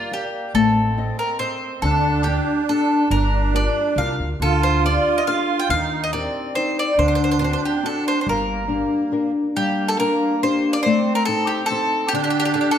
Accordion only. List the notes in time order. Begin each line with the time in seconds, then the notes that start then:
Already playing: A#3
0.54 C4
1.82 D4
3.10 D4
4.41 F4
5.71 D#4
6.13 C4
6.91 D#4
6.97 D4
8.26 A#3
9.56 A#3
10.85 C4
12.13 D4